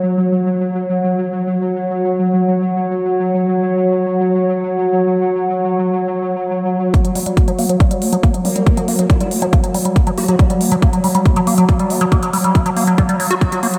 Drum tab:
HH |----------------|----------------|----------------|----------------|
BD |----------------|----------------|----------------|----------------|

HH |xxoxxxoxxxoxxxox|xxoxxxoxxxoxxxox|xxoxxxoxxxoxxxox|xxoxxxoxxxoxxxox|
BD |o---o---o---o---|o---o---o---o---|o---o---o---o---|o---o---o---o---|